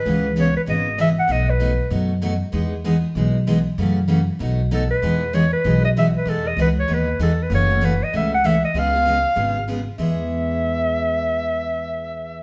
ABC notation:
X:1
M:4/4
L:1/8
Q:"Swing" 1/4=193
K:E
V:1 name="Clarinet"
B2 c B d2 e f | d B3 z4 | z8 | z6 A B- |
B2 c B2 d e B | A d B c B2 A B | c2 B d e f e d | ^e6 z2 |
e8- | e8 |]
V:2 name="Steel-string acoustic guitar"
[C,E,B,CG] z [C,E,B,CG] z [C,E,B,CG] z [C,E,B,CG] z | [B,,F,A,DF] z [B,,F,A,DF] z [B,,F,A,DF] z [B,,F,A,DF] z | [E,G,B,DG] z [E,G,B,DG] z [E,G,B,DG] z [E,G,B,DG] z | [C,E,A,CF] z [C,E,A,CF] z [B,,F,A,DF] z [B,,F,A,DF] z |
[E,G,B,DG] z [E,G,B,DG] z [E,G,B,DG] z [E,G,B,DG] z | [E,G,B,DG] z [E,G,B,DG] z [E,G,B,DG] z [E,G,B,DG] z | [C,E,A,CF] [A,CF] [C,E,A,CF] z [C,E,A,CF] z [C,E,A,CF] z | [C,G,B,^EG] [B,EG] [C,G,B,EG] z [C,G,B,EG] z [C,G,B,EG] z |
[E,G,B,G]8- | [E,G,B,G]8 |]
V:3 name="Upright bass" clef=bass
C,,4 G,,,4 | B,,,4 F,,4 | E,,4 B,,,4 | F,,4 B,,,4 |
E,,4 B,,,4 | E,,2 C,,2 D,,2 E,,2 | F,,,4 C,,4 | C,,4 G,,,4 |
E,,8- | E,,8 |]